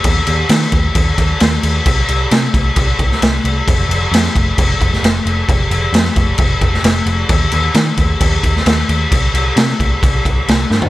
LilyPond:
<<
  \new Staff \with { instrumentName = "Picked electric bass" } { \clef bass \time 4/4 \key c \mixolydian \tempo 4 = 132 ees,8 ees,8 ees8 ees,8 ees,8 ees,8 ees,8 ees,8 | c,8 c,8 c8 c,8 c,8 c,8 c,8 c,8 | f,,8 f,,8 f,8 f,,8 f,,8 f,,8 f,,8 f,,8 | f,,8 f,,8 f,8 f,,8 f,,8 f,,8 f,,8 f,,8 |
ees,8 ees,8 ees8 ees,8 ees,8 ees,8 ees,8 ees,8 | c,8 c,8 c8 c,8 c,8 c,8 c,8 g,8 | }
  \new DrumStaff \with { instrumentName = "Drums" } \drummode { \time 4/4 <cymc bd>8 cymc8 <cymc sn>16 sn16 <cymc bd>8 <cymc bd>8 <cymc bd>8 <cymc sn>8 cymc8 | <cymc bd>8 cymc8 <cymc sn>8 <cymc bd>8 <cymc bd>8 <cymc bd>16 sn16 <cymc sn>8 cymc8 | <cymc bd>8 cymc8 <cymc sn>16 sn16 <cymc bd>8 <cymc bd>8 <cymc bd>16 sn16 <cymc sn>8 cymc8 | <cymc bd>8 cymc8 <cymc sn>16 sn16 <cymc bd>8 <cymc bd>8 <cymc bd>16 sn16 <cymc sn>8 cymc8 |
<cymc bd>8 cymc8 <cymc sn>8 <cymc bd>8 <cymc bd>8 <cymc bd>16 sn16 <cymc sn>8 cymc8 | <cymc bd>8 cymc8 <cymc sn>16 sn16 <cymc bd>8 <cymc bd>8 <cymc bd>8 <cymc sn>8 sn16 tomfh16 | }
>>